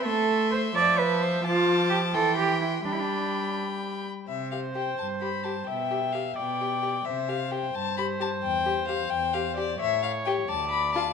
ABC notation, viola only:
X:1
M:6/8
L:1/8
Q:3/8=87
K:C
V:1 name="Viola"
A,3 F,3 | F,3 E,3 | G,4- G, z | c6 |
e3 d3 | c6- | c6 | ^c3 d3 |]